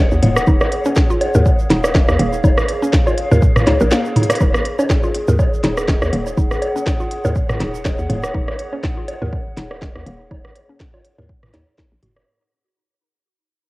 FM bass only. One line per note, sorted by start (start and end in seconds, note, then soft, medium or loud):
0.12 0.21 D#2 medium
0.23 0.43 D#1 loud
0.47 0.58 D#1 loud
1.35 1.44 D#2 medium
1.70 1.94 D#1 loud
1.95 2.06 D#1 loud
2.09 2.17 D#2 medium
2.19 2.40 D#1 loud
2.44 2.55 D#1 loud
3.32 3.40 D#2 medium
3.67 3.78 C#2 medium
3.81 3.92 A#1 loud
4.41 4.52 D#1 loud
5.28 5.37 D#2 medium
5.64 5.88 D#1 loud
5.88 5.99 D#1 loud
6.02 6.11 D#2 medium
6.13 6.33 D#1 medium
6.37 6.49 D#1 loud
7.25 7.34 D#2 medium
7.60 7.84 D#1 medium
7.85 7.96 D#1 medium
7.99 8.07 D#2 medium
8.10 8.30 D#1 loud
8.34 8.45 D#1 loud
9.22 9.30 D#2 medium
9.57 9.81 D#1 medium
9.82 9.93 D#1 medium
9.96 10.04 D#2 medium
10.06 10.27 D#1 medium
10.31 10.42 D#1 loud
11.18 11.27 D#2 medium
11.54 11.65 D#2 medium
11.92 12.01 A#1 medium
12.03 12.23 F#1 medium